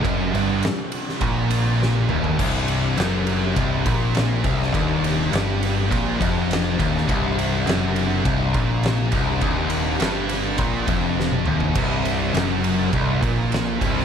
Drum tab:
CC |----------------|x---------------|----------------|----------------|
RD |x-x-x-x-x-x-----|--x-x-x-x-x-x-x-|x-x-x-x-x-x-x-x-|x-x-x-x-x-x-x-x-|
SD |----o--o----o---|----o-------o--o|----o-o-----o--o|----o-------o---|
T1 |----------------|----------------|----------------|----------------|
T2 |--------------o-|----------------|----------------|----------------|
FT |---------------o|----------------|----------------|----------------|
BD |o-------o-------|o-------o-o---o-|o-------o-o---o-|o-------o-o---o-|

CC |----------------|x---------------|
RD |x-x-x-x-x-x-----|--x-x-x-x-x-x-x-|
SD |----o-o-----o---|----o-------o--o|
T1 |-------------o--|----------------|
T2 |--------------o-|----------------|
FT |---------------o|----------------|
BD |o-------o-o-----|o-------o-o---o-|